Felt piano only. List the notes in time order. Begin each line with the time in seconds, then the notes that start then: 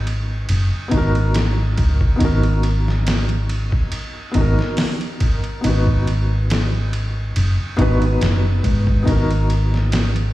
Already playing: B3 D#4 F#4 B4
0.88 B3 D#4
0.95 F#4 A#4
2.16 B3 D#4
2.21 F#4 A#4
4.32 B3 D#4
4.37 F#4 A#4
5.61 B3 D#4
5.67 F#4 B4
7.77 B3 D#4 F#4
7.82 B4
7.97 B3 D#4
8.03 F#4 B4
9.03 B3 D#4
9.09 F#4 A#4